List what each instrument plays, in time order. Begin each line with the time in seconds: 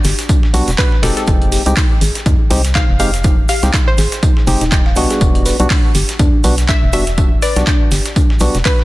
0.04 fm bass G1, synth arpeggio sound G4, snare, open hi-hat, tambourine, shaker
0.19 snare, closed hi-hat, shaker
0.29 synth arpeggio sound D4, kick, closed hi-hat, tambourine, shaker
0.43 snare
0.53 fm bass B1, synth stab G3 B3 D4 F#4, synth arpeggio sound B4, open hi-hat, tambourine, shaker
0.68 fm bass E1, snare, closed hi-hat, shaker
0.78 synth arpeggio sound D4, synth pluck B4, kick, snare, clap, closed hi-hat, open hi-hat, shaker
0.92 snare
1.02 fm bass E1, synth stab G#3 C4 D#4 G4, synth arpeggio sound F#4, synth pluck A4, snare, open hi-hat, shaker
1.17 synth pluck A4, snare, closed hi-hat, shaker
1.27 fm bass F1, synth arpeggio sound D#4, kick, closed hi-hat, tambourine, shaker
1.42 closed hi-hat
1.52 synth arpeggio sound G4, snare, open hi-hat, tambourine, shaker
1.66 fm bass C2, synth stab G#3 C4 D#4 G4, closed hi-hat, shaker
1.77 synth arpeggio sound D#4, kick, snare, clap, closed hi-hat, open hi-hat, shaker
2.01 fm bass G#1, synth arpeggio sound G#4, open hi-hat, tambourine, shaker
2.15 snare, closed hi-hat, shaker
2.26 fm bass F2, synth arpeggio sound D#4, kick, closed hi-hat, tambourine, shaker
2.50 fm bass C2, synth stab G#3 C4 D#4 G4, synth arpeggio sound C5, open hi-hat, tambourine, shaker
2.64 snare, closed hi-hat, shaker
2.75 synth arpeggio sound D#4, synth pluck F5, kick, snare, clap, closed hi-hat, tambourine, shaker
2.89 fm bass F1
2.99 synth stab G#3 C4 D#4 G4, synth arpeggio sound G4, synth pluck F5, open hi-hat, tambourine, shaker
3.14 snare, closed hi-hat, shaker
3.24 synth arpeggio sound D#4, kick, closed hi-hat, tambourine, shaker
3.49 synth arpeggio sound G4, synth pluck F5, snare, open hi-hat, tambourine, shaker
3.63 fm bass C2, synth stab G#3 C4 D#4 G4, snare, closed hi-hat, shaker
3.74 synth arpeggio sound D#4, kick, snare, clap, closed hi-hat, tambourine, shaker
3.88 synth pluck C5
3.98 fm bass G#1, synth arpeggio sound G#4, snare, open hi-hat, tambourine, shaker
4.12 snare, closed hi-hat, shaker
4.23 synth arpeggio sound D#4, kick, closed hi-hat, tambourine, shaker
4.37 snare
4.47 fm bass F1, synth stab G#3 C4 D#4 G4, synth arpeggio sound D#4, open hi-hat, tambourine, shaker
4.61 fm bass D#1, synth arpeggio sound D#4, snare, closed hi-hat, shaker
4.72 synth arpeggio sound D#5, kick, snare, clap, closed hi-hat, tambourine, shaker
4.86 synth arpeggio sound F5, snare
4.96 fm bass C2, synth stab G3 B3 D4 F#4, synth arpeggio sound D#5, open hi-hat, tambourine, shaker
5.10 synth arpeggio sound G#4, snare, closed hi-hat, shaker
5.21 fm bass E1, synth arpeggio sound D4, kick, closed hi-hat, tambourine, shaker
5.35 closed hi-hat
5.46 synth arpeggio sound B4, snare, open hi-hat, tambourine, shaker
5.59 fm bass B1, synth stab G3 B3 D4 F#4, closed hi-hat, shaker
5.70 synth arpeggio sound D4, kick, snare, clap, closed hi-hat, open hi-hat, shaker
5.95 fm bass G1, synth arpeggio sound G4, open hi-hat, tambourine, shaker
6.09 snare, closed hi-hat, shaker
6.19 fm bass E2, synth arpeggio sound D4, kick, closed hi-hat, tambourine, shaker
6.44 fm bass B1, synth stab G3 B3 D4 F#4, synth arpeggio sound B4, open hi-hat, tambourine, shaker
6.58 snare, closed hi-hat, shaker
6.69 synth arpeggio sound D4, synth pluck E5, kick, snare, clap, closed hi-hat, tambourine, shaker
6.83 fm bass E1
6.93 synth stab G3 B3 D4 F#4, synth arpeggio sound F#4, synth pluck E5, open hi-hat, tambourine, shaker
7.07 snare, closed hi-hat, shaker
7.18 synth arpeggio sound D4, kick, closed hi-hat, tambourine, shaker
7.42 synth arpeggio sound B4, synth pluck D5, snare, open hi-hat, tambourine, shaker
7.56 fm bass B1, synth stab G3 B3 D4 F#4, snare, closed hi-hat, shaker
7.67 synth arpeggio sound D4, kick, snare, clap, closed hi-hat, tambourine, shaker
7.92 fm bass G1, synth arpeggio sound G4, snare, open hi-hat, tambourine, shaker
8.05 snare, closed hi-hat, shaker
8.16 synth arpeggio sound D4, kick, closed hi-hat, tambourine, shaker
8.30 snare
8.40 fm bass B1, synth stab G3 B3 D4 F#4, synth arpeggio sound B4, open hi-hat, tambourine, shaker
8.54 fm bass E1, snare, closed hi-hat, shaker
8.65 synth arpeggio sound D4, synth pluck B4, kick, snare, clap, closed hi-hat, open hi-hat, shaker
8.79 snare